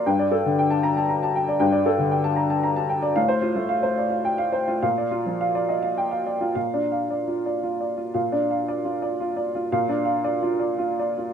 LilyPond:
<<
  \new Staff \with { instrumentName = "Upright piano" } { \time 3/4 \key bes \major \tempo 4 = 114 << { r4. bes''16 r4 r16 | r2. | r2 g''16 r8. | r2 g''16 r8. |
f''8 r2 r8 | r2. | r2. | } \\ { g''16 d''16 a'16 d16 g''16 a''8 a''16 bes''16 a''16 g''16 d''16 | g''16 d''16 a'16 d16 g''16 a''16 bes''16 a''16 bes''16 a''16 g''16 d''16 | f''16 c''16 f'16 a16 f''16 c''16 d''16 f''8 f''16 c''16 f'16 | f''16 d''16 f'16 f16 f''16 d''16 ees''16 f''8 f''16 d''16 f'16 |
\tuplet 3/2 { r8 d''8 f''8 d''8 f'8 d''8 f'8 d''8 f'8 } | \tuplet 3/2 { f''8 d''8 f''8 d''8 f'8 d''8 f'8 d''8 f'8 } | \tuplet 3/2 { f''8 d''8 f''8 d''8 f'8 d''8 f'8 d''8 f'8 } | } >> }
  \new Staff \with { instrumentName = "Upright piano" } { \clef bass \time 3/4 \key bes \major g,2. | g,2. | a,2. | bes,2. |
\tuplet 3/2 { bes,8 d'4 } r2 | \tuplet 3/2 { bes,8 d'4 } r2 | \tuplet 3/2 { bes,8 d'4 } r2 | }
>>